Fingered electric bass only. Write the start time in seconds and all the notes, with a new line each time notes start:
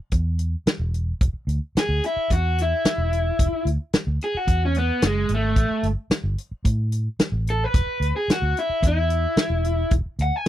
0.12 E2
0.66 muted fingered electric bass stroke
0.79 E1
1.21 E1
1.33 muted fingered electric bass stroke
1.47 D2
1.75 muted fingered electric bass stroke
1.89 D2
2.16 muted fingered electric bass stroke
2.30 E2
2.85 muted fingered electric bass stroke
2.98 E1
3.39 E1
3.65 D2
3.94 muted fingered electric bass stroke
4.07 D2
4.34 muted fingered electric bass stroke
4.47 E2
5.02 F#1
5.29 G#1
5.56 A1
5.83 G1
6.10 muted fingered electric bass stroke
6.24 G1
6.51 muted fingered electric bass stroke
6.65 A2
7.19 muted fingered electric bass stroke
7.32 A1
7.74 E1
7.87 muted fingered electric bass stroke
8.00 D2
8.28 muted fingered electric bass stroke
8.42 D2
8.69 muted fingered electric bass stroke
8.82 E2
9.36 muted fingered electric bass stroke
9.50 E1
9.91 E1
10.06 muted fingered electric bass stroke
10.19 D2